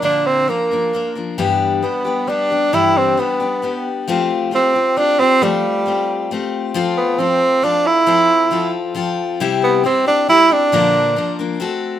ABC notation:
X:1
M:3/4
L:1/8
Q:1/4=135
K:Flyd
V:1 name="Steel-string acoustic guitar"
[_B,,D,F,_B,D_B]2 [F,B,DB] [F,B,DB] [F,B,DB] [F,B,DB] | [G,,E,G,B,DG]2 [G,B,DG] [G,B,DG] [G,B,DG] [G,B,DG] | [G,,E,G,B,DG]2 [G,B,DG] [G,B,DG] [G,B,DG]2 | [F,A,CFG]2 [A,CFG] [CFG] [A,CFG] [CFG] |
[F,A,CFG]2 [A,CFG]2 [A,CFG]2 | [F,CFA]2 [F,CFA]2 [F,CFA]2 | [F,CA]2 [F,CFA]2 [F,CFA]2 | [C,G,CEG]2 [G,CEG] [CEG] [G,CEG] [CEG] |
[_B,,D,F,_B,D_B]2 [F,B,DB] [F,B,DB] [A,C^FA]2 |]
V:2 name="Tenor saxophone"
D C _B,3 z | z2 B,2 D2 | E C B,3 z | z2 C2 D C |
G,4 z2 | z B, C2 D E- | E3 z3 | z B, C D E D- |
D3 z3 |]